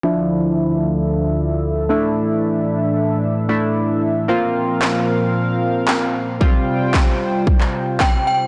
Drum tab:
CP |----------------|----------------|----x-------x---|----x----x--x---|
SD |----------------|----------------|----o-------o---|----o-------o---|
BD |----------------|----------------|----------------|o---o---o---o---|